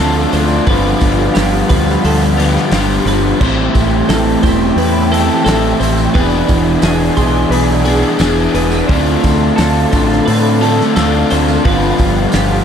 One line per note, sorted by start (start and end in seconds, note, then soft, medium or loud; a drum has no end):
0.00 0.25 D2 medium
0.00 0.31 D3 medium
0.00 0.66 D3 medium
0.00 0.65 F3 medium
0.00 0.32 A3 medium
0.00 0.65 C4 medium
0.00 0.32 D4 medium
0.00 0.64 D4 medium
0.00 0.32 F4 medium
0.00 0.33 A4 medium
0.00 0.64 A4 medium
0.00 0.65 A4 medium
0.00 0.65 F5 medium
0.00 0.64 A5 medium
0.00 3.37 D6 medium
0.16 tambourine soft
0.32 0.59 D2 medium
0.32 0.65 D3 medium
0.32 0.65 A3 medium
0.32 0.65 D4 medium
0.32 0.65 F4 medium
0.32 0.66 C5 medium
0.32 open hi-hat medium
0.32 tambourine medium
0.48 tambourine medium
0.66 0.93 G1 medium
0.66 1.34 G2 medium
0.66 1.34 D3 loud
0.66 1.35 F3 loud
0.66 1.35 B3 loud
0.66 1.35 F4 loud
0.66 3.37 G4 medium
0.66 1.35 B4 medium
0.66 3.39 F5 medium
0.66 3.39 B5 medium
0.66 kick loud
0.66 open hi-hat medium
1.00 1.28 G1 medium
1.00 kick medium
1.00 open hi-hat medium
1.00 tambourine medium
1.17 tambourine soft
1.34 1.62 G1 medium
1.34 1.68 G2 medium
1.34 1.68 D3 medium
1.34 1.69 F3 loud
1.34 1.69 B3 medium
1.34 1.70 F4 medium
1.34 2.08 G4 medium
1.34 snare loud
1.34 open hi-hat medium
1.34 tambourine medium
1.53 tambourine soft
1.69 1.96 D2 medium
1.69 2.02 G2 medium
1.69 2.03 D3 medium
1.69 2.03 F3 medium
1.69 2.04 B3 loud
1.69 2.04 F4 loud
1.69 2.04 B4 medium
1.69 kick medium
1.69 open hi-hat medium
1.69 tambourine medium
1.87 snare soft
1.87 tambourine soft
2.03 2.56 D2 medium
2.03 2.71 G2 loud
2.03 2.71 D3 medium
2.03 2.72 F3 loud
2.03 2.72 B3 loud
2.03 2.73 F4 loud
2.03 2.39 A4 medium
2.03 open hi-hat medium
2.03 tambourine soft
2.22 tambourine soft
2.37 2.70 G2 medium
2.37 2.71 D3 medium
2.37 2.71 F3 medium
2.37 2.71 B3 medium
2.37 2.70 F4 medium
2.37 2.72 G4 medium
2.37 open hi-hat medium
2.37 tambourine soft
2.56 snare soft
2.56 tambourine soft
2.71 2.98 G1 medium
2.71 3.04 G2 medium
2.71 3.06 D3 medium
2.71 3.05 F3 medium
2.71 3.06 B3 medium
2.71 3.07 F4 medium
2.71 3.08 G4 medium
2.71 snare loud
2.71 open hi-hat medium
2.71 tambourine medium
2.91 tambourine soft
3.05 3.32 G1 loud
3.05 3.38 G2 medium
3.05 3.39 D3 medium
3.05 3.39 F3 medium
3.05 3.39 B3 loud
3.05 3.39 F4 medium
3.05 3.41 B4 medium
3.05 open hi-hat medium
3.05 tambourine medium
3.37 3.67 A1 medium
3.37 4.08 A2 medium
3.37 4.09 E3 medium
3.37 6.11 G4 medium
3.37 4.08 C5 medium
3.37 8.85 E5 medium
3.37 6.11 G5 medium
3.37 6.11 A5 medium
3.37 kick loud
3.37 crash loud
3.41 4.42 G3 medium
3.41 4.08 A3 loud
3.41 4.08 C4 medium
3.41 4.10 E4 loud
3.60 tambourine soft
3.75 4.01 A1 medium
3.75 kick medium
3.75 open hi-hat medium
3.75 tambourine medium
4.09 4.35 A1 medium
4.09 4.41 A2 medium
4.09 4.42 E3 medium
4.09 4.42 A3 medium
4.09 4.43 C4 medium
4.09 4.44 E4 medium
4.09 4.42 A4 medium
4.09 snare loud
4.09 open hi-hat medium
4.09 tambourine loud
4.29 tambourine soft
4.42 4.70 E1 medium
4.42 4.76 A2 medium
4.42 4.76 E3 medium
4.42 6.14 G3 medium
4.42 4.77 A3 medium
4.42 4.77 C4 loud
4.42 4.77 E4 loud
4.42 4.77 C5 medium
4.42 kick medium
4.42 open hi-hat medium
4.42 tambourine medium
4.46 6.15 A2 medium
4.64 tambourine soft
4.76 5.29 E2 medium
4.76 5.44 A2 loud
4.76 5.45 E3 loud
4.76 5.45 A3 loud
4.76 5.45 C4 loud
4.76 5.46 E4 loud
4.76 5.11 B4 medium
4.76 open hi-hat medium
5.12 5.43 A2 medium
5.12 5.44 E3 medium
5.12 5.45 A3 medium
5.12 5.45 C4 medium
5.12 5.44 E4 medium
5.12 5.43 A4 medium
5.12 open hi-hat medium
5.12 tambourine soft
5.45 5.72 A1 medium
5.45 5.78 A2 medium
5.45 5.79 E3 medium
5.45 5.79 A3 medium
5.45 5.79 C4 medium
5.45 5.81 E4 medium
5.45 5.80 A4 medium
5.45 open hi-hat medium
5.45 tambourine loud
5.49 snare loud
5.64 tambourine soft
5.79 6.06 A1 medium
5.79 6.12 A2 medium
5.79 6.12 E3 medium
5.79 6.13 A3 medium
5.79 6.13 C4 medium
5.79 6.14 E4 medium
5.79 6.14 C5 medium
5.79 open hi-hat medium
5.79 tambourine medium
5.97 tambourine medium
6.13 6.41 E1 medium
6.13 6.80 E3 medium
6.13 6.82 B3 loud
6.13 6.82 D4 loud
6.13 8.86 G#4 medium
6.13 6.82 G#4 loud
6.13 6.83 B4 medium
6.13 8.88 G#5 medium
6.13 12.64 D6 medium
6.13 kick loud
6.13 open hi-hat medium
6.31 tambourine soft
6.48 6.76 E1 medium
6.48 kick medium
6.48 open hi-hat medium
6.48 tambourine medium
6.82 7.09 E1 medium
6.82 7.16 E3 loud
6.82 7.17 B3 medium
6.82 7.17 D4 medium
6.82 7.17 G#4 medium
6.82 7.18 G#4 medium
6.82 snare loud
6.82 open hi-hat medium
6.82 tambourine loud
7.01 tambourine soft
7.17 7.44 B1 medium
7.17 7.50 E3 loud
7.17 7.51 B3 medium
7.17 7.52 D4 loud
7.17 7.52 G#4 loud
7.17 7.52 C6 medium
7.17 kick medium
7.17 open hi-hat medium
7.17 tambourine medium
7.34 tambourine soft
7.50 8.03 B1 loud
7.50 8.19 E3 medium
7.50 8.20 B3 medium
7.50 8.21 D4 loud
7.50 8.20 G#4 loud
7.50 7.84 B4 medium
7.50 open hi-hat medium
7.84 8.18 E3 medium
7.84 8.19 B3 medium
7.84 8.20 D4 medium
7.84 8.19 G#4 medium
7.84 8.18 G#4 medium
7.84 open hi-hat medium
7.84 tambourine soft
8.01 tambourine soft
8.19 8.46 E1 medium
8.19 8.53 E3 medium
8.19 8.54 B3 medium
8.19 8.55 D4 medium
8.19 8.55 G#4 medium
8.19 8.54 G#4 medium
8.19 snare loud
8.19 open hi-hat medium
8.19 tambourine loud
8.37 tambourine soft
8.54 8.81 E1 medium
8.54 8.87 E3 medium
8.54 8.88 B3 medium
8.54 8.90 D4 medium
8.54 8.88 G#4 loud
8.54 8.87 B4 medium
8.54 open hi-hat medium
8.54 tambourine medium
8.71 tambourine medium
8.88 9.16 D2 loud
8.88 9.57 D3 loud
8.88 9.58 A3 loud
8.88 9.59 D4 loud
8.88 9.59 F4 loud
8.88 11.63 A4 medium
8.88 9.56 C5 medium
8.88 12.64 F5 medium
8.88 11.63 A5 medium
8.88 kick loud
8.88 open hi-hat medium
8.92 9.92 C4 loud
9.06 tambourine soft
9.24 9.50 D2 loud
9.24 kick medium
9.24 open hi-hat medium
9.24 tambourine medium
9.56 9.84 D2 medium
9.56 9.91 D3 medium
9.56 9.93 A3 medium
9.56 9.93 D4 loud
9.56 9.93 F4 loud
9.56 9.92 A4 medium
9.56 snare loud
9.56 open hi-hat medium
9.56 tambourine loud
9.75 tambourine soft
9.92 10.19 A1 medium
9.92 10.26 D3 loud
9.92 10.26 A3 medium
9.92 11.64 C4 medium
9.92 10.27 D4 loud
9.92 10.27 F4 loud
9.92 10.25 C5 medium
9.92 kick medium
9.92 open hi-hat medium
9.92 tambourine medium
9.97 11.65 D3 medium
10.10 snare soft
10.10 tambourine soft
10.26 10.80 A2 medium
10.26 10.95 D3 loud
10.26 10.95 A3 loud
10.26 10.96 D4 loud
10.26 10.96 F4 loud
10.26 10.61 B4 medium
10.26 open hi-hat medium
10.61 10.95 D3 medium
10.61 10.95 A3 medium
10.61 10.94 D4 medium
10.61 10.94 F4 medium
10.61 10.95 A4 medium
10.61 open hi-hat medium
10.61 tambourine soft
10.80 snare soft
10.80 tambourine soft
10.96 11.22 D2 medium
10.96 11.30 D3 medium
10.96 11.30 A3 medium
10.96 11.30 D4 medium
10.96 11.31 F4 medium
10.96 11.30 A4 medium
10.96 snare loud
10.96 open hi-hat medium
10.96 tambourine medium
11.15 tambourine soft
11.30 11.57 D2 loud
11.30 11.63 D3 medium
11.30 11.63 A3 loud
11.30 11.63 D4 medium
11.30 11.64 F4 loud
11.30 11.65 C5 medium
11.30 open hi-hat medium
11.30 tambourine medium
11.48 tambourine medium
11.64 11.91 G1 medium
11.64 12.31 G2 loud
11.64 12.32 D3 loud
11.64 12.32 F3 loud
11.64 12.33 B3 loud
11.64 12.33 F4 loud
11.64 12.64 G4 medium
11.64 12.34 B4 medium
11.64 kick loud
11.64 open hi-hat medium
11.69 12.64 B5 medium
11.81 tambourine soft
11.98 12.25 G1 loud
11.98 kick medium
11.98 open hi-hat medium
11.98 tambourine medium
12.15 tambourine soft
12.32 12.60 G1 medium
12.32 12.64 G2 medium
12.32 12.64 D3 medium
12.32 12.64 F3 medium
12.32 12.64 B3 medium
12.32 12.64 F4 loud
12.32 12.64 G4 medium
12.32 snare loud
12.32 open hi-hat medium
12.32 tambourine loud